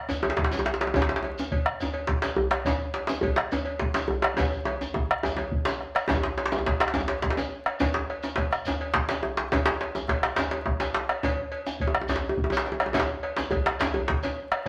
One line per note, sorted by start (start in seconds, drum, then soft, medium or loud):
0.09 cowbell soft
0.09 djembe slap medium
0.09 djembe tone medium
0.09 djembe bass medium
0.09 shekere medium
0.23 cowbell soft
0.23 djembe tone loud
0.30 djembe slap medium
0.37 bombo low loud
0.37 djembe slap medium
0.44 djembe slap medium
0.51 cowbell soft
0.51 djembe slap medium
0.51 djembe tone medium
0.51 shekere soft
0.53 djembe tone medium
0.59 djembe tone loud
0.66 bombo rim soft
0.66 djembe slap medium
0.74 djembe slap medium
0.81 cowbell soft
0.81 djembe slap medium
0.87 djembe tone medium
0.94 bombo low loud
0.94 cowbell medium
0.94 djembe slap medium
0.94 djembe tone loud
0.94 shekere medium
0.97 djembe tone medium
0.97 djembe bass medium
1.02 djembe slap medium
1.09 djembe slap medium
1.16 djembe slap medium
1.23 cowbell soft
1.23 djembe tone medium
1.38 djembe slap medium
1.38 djembe tone medium
1.38 shekere soft
1.52 bombo low loud
1.52 cowbell soft
1.66 bombo rim medium
1.80 cowbell soft
1.80 djembe slap medium
1.80 djembe tone medium
1.80 djembe bass medium
1.80 shekere medium
1.94 cowbell medium
2.07 bombo low loud
2.07 djembe slap medium
2.22 cowbell soft
2.22 djembe slap medium
2.22 shekere soft
2.24 djembe slap medium
2.24 djembe tone medium
2.36 bombo rim soft
2.36 djembe bass medium
2.51 bombo rim medium
2.51 cowbell medium
2.51 djembe slap medium
2.65 bombo low loud
2.65 cowbell medium
2.65 djembe slap medium
2.65 djembe tone medium
2.65 djembe bass medium
2.65 shekere medium
2.94 cowbell soft
2.94 djembe slap medium
3.07 djembe slap medium
3.07 shekere soft
3.09 djembe slap medium
3.09 djembe tone medium
3.21 bombo low loud
3.21 cowbell medium
3.21 djembe bass medium
3.36 bombo rim medium
3.36 djembe slap medium
3.52 cowbell medium
3.52 djembe slap medium
3.52 djembe tone medium
3.52 djembe bass medium
3.52 shekere medium
3.65 cowbell medium
3.79 bombo low loud
3.79 djembe slap medium
3.94 cowbell medium
3.94 djembe slap medium
3.94 djembe tone medium
3.94 shekere soft
4.08 bombo rim soft
4.08 djembe bass medium
4.22 bombo rim medium
4.22 cowbell medium
4.22 djembe slap medium
4.37 bombo low loud
4.37 cowbell medium
4.37 djembe slap medium
4.37 djembe tone loud
4.37 djembe tone medium
4.37 djembe bass medium
4.37 shekere medium
4.52 djembe slap soft
4.52 shekere soft
4.65 cowbell medium
4.65 djembe tone loud
4.81 djembe slap medium
4.81 djembe tone medium
4.81 shekere soft
4.94 bombo rim soft
4.94 bombo low loud
4.94 djembe tone loud
5.11 bombo rim medium
5.23 bombo rim soft
5.23 cowbell medium
5.23 djembe slap medium
5.23 djembe tone loud
5.23 djembe tone medium
5.23 djembe bass medium
5.23 shekere medium
5.37 bombo rim soft
5.37 cowbell soft
5.37 djembe slap soft
5.37 djembe tone loud
5.51 bombo low loud
5.65 cowbell soft
5.65 djembe slap loud
5.65 shekere soft
5.67 djembe slap medium
5.67 djembe tone medium
5.81 bombo rim soft
5.81 djembe slap soft
5.95 bombo rim medium
5.95 cowbell medium
5.95 djembe slap soft
5.95 shekere soft
6.08 bombo rim soft
6.08 bombo low loud
6.08 cowbell medium
6.08 djembe slap medium
6.08 djembe tone loud
6.08 djembe tone medium
6.08 djembe bass medium
6.08 shekere medium
6.15 djembe tone medium
6.23 djembe slap medium
6.38 bombo rim soft
6.38 cowbell medium
6.38 djembe slap medium
6.46 djembe slap medium
6.52 djembe slap medium
6.52 djembe tone medium
6.52 shekere soft
6.58 djembe tone medium
6.66 bombo rim soft
6.66 bombo low loud
6.66 cowbell medium
6.66 djembe slap medium
6.80 bombo rim medium
6.80 djembe slap soft
6.80 djembe slap loud
6.80 shekere soft
6.88 djembe slap medium
6.94 cowbell medium
6.94 djembe slap medium
6.94 djembe tone medium
6.94 djembe tone loud
6.94 djembe bass medium
6.94 shekere medium
7.01 djembe tone medium
7.08 cowbell medium
7.08 djembe slap medium
7.22 bombo rim soft
7.22 bombo low loud
7.22 djembe slap medium
7.24 djembe slap soft
7.30 djembe slap medium
7.37 cowbell soft
7.37 djembe slap medium
7.37 djembe tone medium
7.37 shekere medium
7.66 bombo rim medium
7.66 cowbell soft
7.66 djembe slap soft
7.80 bombo rim soft
7.80 bombo low medium
7.80 cowbell medium
7.80 djembe slap loud
7.80 djembe tone medium
7.80 djembe bass medium
7.80 shekere medium
7.94 djembe slap medium
8.10 bombo rim soft
8.10 cowbell soft
8.23 djembe slap medium
8.23 djembe tone medium
8.23 shekere medium
8.36 bombo rim soft
8.36 bombo low medium
8.36 cowbell medium
8.36 djembe slap medium
8.52 bombo rim medium
8.52 djembe slap soft
8.52 shekere soft
8.65 cowbell medium
8.65 djembe slap medium
8.65 djembe tone medium
8.65 djembe bass medium
8.65 shekere medium
8.81 cowbell medium
8.94 bombo rim soft
8.94 bombo low loud
8.94 djembe slap loud
8.97 djembe slap soft
9.09 cowbell medium
9.09 djembe slap medium
9.09 shekere soft
9.11 djembe slap medium
9.11 djembe tone medium
9.23 djembe tone medium
9.37 djembe slap medium
9.40 djembe slap soft
9.52 bombo rim soft
9.52 bombo low loud
9.52 cowbell medium
9.52 djembe slap medium
9.52 shekere medium
9.53 djembe slap medium
9.53 djembe tone medium
9.53 djembe bass medium
9.66 djembe slap loud
9.81 bombo rim soft
9.81 cowbell medium
9.81 djembe slap medium
9.95 djembe slap medium
9.95 djembe tone medium
9.95 shekere medium
10.08 bombo rim soft
10.08 bombo low medium
10.08 cowbell medium
10.08 djembe slap medium
10.23 bombo rim medium
10.23 djembe slap medium
10.23 djembe slap soft
10.23 shekere soft
10.36 cowbell medium
10.36 djembe slap loud
10.36 shekere medium
10.39 djembe slap medium
10.39 djembe tone medium
10.39 djembe bass medium
10.51 cowbell medium
10.51 djembe slap medium
10.66 bombo rim soft
10.66 bombo low loud
10.66 djembe slap soft
10.66 djembe tone medium
10.80 cowbell medium
10.80 djembe slap medium
10.80 djembe tone medium
10.80 shekere medium
10.94 djembe slap medium
11.09 bombo rim medium
11.09 cowbell medium
11.09 djembe slap soft
11.23 bombo low loud
11.23 cowbell medium
11.23 djembe slap medium
11.23 djembe tone medium
11.23 djembe bass medium
11.23 shekere medium
11.38 djembe slap soft
11.52 cowbell medium
11.66 djembe slap medium
11.66 djembe tone medium
11.66 shekere soft
11.80 bombo low loud
11.80 cowbell medium
11.87 djembe tone medium
11.95 bombo rim medium
12.01 djembe tone medium
12.08 cowbell medium
12.08 djembe slap medium
12.08 djembe tone medium
12.08 djembe bass medium
12.08 shekere medium
12.16 djembe slap medium
12.23 djembe bass soft
12.29 djembe tone medium
12.37 bombo low loud
12.37 djembe bass soft
12.44 djembe tone medium
12.50 cowbell medium
12.50 djembe tone medium
12.50 djembe bass medium
12.50 shekere soft
12.57 djembe slap medium
12.65 bombo rim soft
12.65 djembe slap medium
12.72 djembe tone medium
12.80 bombo rim medium
12.80 cowbell medium
12.80 djembe slap medium
12.86 djembe tone medium
12.93 bombo rim soft
12.93 bombo low loud
12.93 cowbell medium
12.93 djembe slap loud
12.93 djembe tone medium
12.93 djembe bass medium
12.93 shekere medium
12.99 djembe slap medium
13.23 bombo rim soft
13.23 cowbell medium
13.37 djembe slap medium
13.37 shekere soft
13.38 djembe slap medium
13.38 djembe tone medium
13.51 bombo rim soft
13.51 bombo low medium
13.51 cowbell medium
13.51 djembe bass medium
13.66 bombo rim medium
13.66 djembe slap medium
13.66 djembe slap soft
13.66 shekere soft
13.80 cowbell medium
13.80 djembe slap loud
13.80 djembe slap medium
13.80 djembe tone medium
13.80 djembe bass medium
13.80 shekere medium
13.94 cowbell medium
13.94 djembe bass medium
14.08 bombo rim soft
14.08 bombo low loud
14.08 djembe slap medium
14.10 djembe slap soft
14.23 cowbell medium
14.23 djembe slap medium
14.23 djembe tone medium
14.23 shekere soft
14.52 bombo rim medium
14.52 cowbell medium
14.52 djembe slap soft